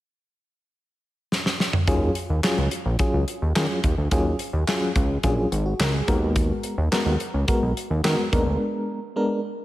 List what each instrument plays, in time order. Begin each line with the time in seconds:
1.32 snare
1.46 snare
1.60 snare
1.73 mid tom
1.87 analog synth bass D#2, fm electric piano F#3 C#4 F4 G#4, kick, closed hi-hat
2.15 closed hi-hat
2.30 analog synth bass D#2
2.43 fm electric piano F#3 C#4 F4 G#4, snare, clap, closed hi-hat
2.58 analog synth bass C#2
2.71 closed hi-hat
2.85 analog synth bass A#1
2.99 fm electric piano F#3 C#4 F4 G#4, kick, closed hi-hat
3.14 analog synth bass C#2
3.28 closed hi-hat
3.42 analog synth bass D#2
3.55 analog synth bass D#3, fm electric piano F#3 C#4 F4 G#4, snare, clap, closed hi-hat
3.84 analog synth bass D#2, kick, closed hi-hat
3.98 analog synth bass D2
4.11 analog synth bass D#2, fm electric piano F#3 C#4 F4 G#4, kick, closed hi-hat
4.39 closed hi-hat
4.53 analog synth bass D#2
4.67 fm electric piano F#3 C#4 F4 G#4, snare, clap, closed hi-hat
4.96 analog synth bass C#2, kick, closed hi-hat
5.23 analog synth bass A#1, fm electric piano F#3 C#4 F4 G#4, kick, closed hi-hat
5.52 analog synth bass G#1, closed hi-hat
5.66 fm electric piano F#4
5.79 analog synth bass C#2, fm electric piano A#4, snare, clap, closed hi-hat
5.94 fm electric piano G#4
6.07 analog synth bass D#2, fm electric piano G#3 B3 F#4 A#4, kick, closed hi-hat
6.36 kick, closed hi-hat
6.63 closed hi-hat
6.78 analog synth bass D#2
6.92 fm electric piano G#3 B3 F#4 A#4, snare, clap, closed hi-hat
7.06 analog synth bass D#2
7.20 closed hi-hat
7.34 analog synth bass C#2
7.47 fm electric piano G#3 B3 F#4 A#4, kick, closed hi-hat
7.62 analog synth bass B1
7.77 closed hi-hat
7.90 analog synth bass D#2
8.04 analog synth bass D#3, fm electric piano G#3 B3 F#4 A#4, snare, clap, closed hi-hat
8.32 analog synth bass D#2, fm electric piano G#3 B3 D4 A#4, kick, closed hi-hat
8.46 analog synth bass D2
9.16 fm electric piano G#3 B3 D4 A#4